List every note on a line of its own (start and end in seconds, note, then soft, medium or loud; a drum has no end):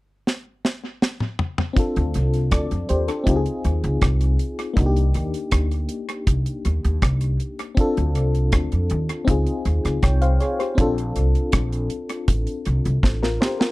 0.27 snare medium
0.65 snare medium
1.02 snare medium
1.20 mid tom medium
1.39 floor tom medium
1.58 floor tom medium
1.73 3.22 C4 medium
1.73 2.50 D4 medium
1.73 kick loud
1.73 closed hi-hat medium
1.77 2.51 F4 medium
1.77 2.51 A4 medium
1.96 2.13 D2 medium
1.96 closed hi-hat soft
2.14 2.48 C2 medium
2.14 closed hi-hat medium
2.34 closed hi-hat soft
2.51 2.69 D2 medium
2.51 2.88 A4 medium
2.51 2.87 D5 medium
2.51 kick loud
2.51 cross-stick loud
2.51 closed hi-hat medium
2.71 2.88 F2 medium
2.71 closed hi-hat medium
2.89 3.07 D#2 medium
2.89 3.08 G4 medium
2.89 3.07 C5 medium
2.89 closed hi-hat medium
3.08 3.44 D4 soft
3.08 3.44 A4 medium
3.08 closed hi-hat medium
3.24 3.44 C#2 medium
3.24 4.72 C4 medium
3.24 4.73 D#4 medium
3.24 4.74 F4 medium
3.24 kick loud
3.24 closed hi-hat loud
3.30 3.35 G4 medium
3.36 4.79 G#4 medium
3.46 closed hi-hat medium
3.64 3.82 D#2 medium
3.64 closed hi-hat medium
3.84 4.00 C#2 medium
3.84 closed hi-hat medium
4.01 4.36 C2 loud
4.01 kick loud
4.01 cross-stick loud
4.01 closed hi-hat medium
4.21 closed hi-hat medium
4.39 closed hi-hat medium
4.59 closed hi-hat soft
4.74 5.11 C2 loud
4.74 7.72 A#3 medium
4.74 7.73 D4 medium
4.74 kick loud
4.74 closed hi-hat medium
4.78 7.74 D#4 medium
4.78 4.85 F#4 medium
4.86 7.78 G4 medium
4.96 closed hi-hat medium
5.14 5.32 D#2 medium
5.14 closed hi-hat medium
5.34 closed hi-hat soft
5.51 5.86 D2 medium
5.51 kick loud
5.51 cross-stick loud
5.51 closed hi-hat medium
5.71 closed hi-hat soft
5.89 closed hi-hat medium
6.09 closed hi-hat medium
6.27 6.44 C2 medium
6.27 kick loud
6.27 closed hi-hat loud
6.46 closed hi-hat soft
6.65 6.82 D#2 medium
6.65 closed hi-hat medium
6.85 7.01 D#2 medium
6.85 closed hi-hat soft
7.02 7.36 C2 medium
7.02 kick loud
7.02 cross-stick medium
7.02 closed hi-hat medium
7.21 closed hi-hat medium
7.40 closed hi-hat medium
7.59 closed hi-hat soft
7.75 9.23 C4 medium
7.75 9.24 D4 medium
7.75 9.25 F4 medium
7.75 kick loud
7.75 closed hi-hat medium
7.81 9.26 A4 medium
7.97 8.16 D2 medium
7.97 closed hi-hat soft
8.15 8.49 C2 medium
8.15 closed hi-hat medium
8.35 closed hi-hat soft
8.52 8.70 D2 medium
8.52 kick loud
8.52 cross-stick loud
8.52 closed hi-hat medium
8.72 8.89 F2 medium
8.72 closed hi-hat soft
8.90 9.07 D#2 medium
8.90 closed hi-hat medium
9.09 closed hi-hat medium
9.25 9.45 C#2 medium
9.25 10.73 C4 medium
9.25 10.74 D#4 medium
9.25 10.75 F4 medium
9.25 kick loud
9.25 closed hi-hat loud
9.31 10.03 G#4 medium
9.47 closed hi-hat soft
9.65 9.82 D#2 medium
9.65 closed hi-hat medium
9.85 10.01 C#2 medium
9.85 cross-stick medium
9.85 closed hi-hat soft
10.03 10.37 C2 medium
10.03 10.21 C#5 medium
10.03 10.21 G5 medium
10.03 kick loud
10.03 cross-stick medium
10.03 closed hi-hat medium
10.22 10.40 C5 medium
10.22 10.39 F5 medium
10.22 closed hi-hat medium
10.40 10.59 G#4 medium
10.40 10.58 C#5 medium
10.40 closed hi-hat medium
10.59 10.95 G4 medium
10.59 10.95 C5 medium
10.59 closed hi-hat soft
10.75 11.12 A#1 loud
10.75 13.72 C4 medium
10.75 13.72 D4 medium
10.75 12.62 F4 medium
10.75 kick loud
10.75 closed hi-hat medium
10.81 12.63 A4 medium
10.98 closed hi-hat soft
11.16 11.33 C2 medium
11.16 closed hi-hat medium
11.35 closed hi-hat soft
11.52 11.87 A#1 medium
11.52 kick loud
11.52 cross-stick loud
11.52 closed hi-hat medium
11.73 closed hi-hat medium
11.90 closed hi-hat medium
12.09 closed hi-hat medium
12.28 12.45 A1 medium
12.28 kick loud
12.28 closed hi-hat loud
12.47 closed hi-hat soft
12.65 12.83 C2 medium
12.65 closed hi-hat medium
12.85 13.02 C2 medium
12.85 closed hi-hat medium
13.03 13.37 A1 medium
13.03 kick medium
13.03 snare soft
13.23 13.40 F4 medium
13.23 13.40 A#4 medium
13.23 snare medium
13.41 13.59 G4 medium
13.41 13.59 C5 medium
13.41 snare medium
13.60 13.72 F4 medium
13.60 13.72 A#4 medium
13.60 snare medium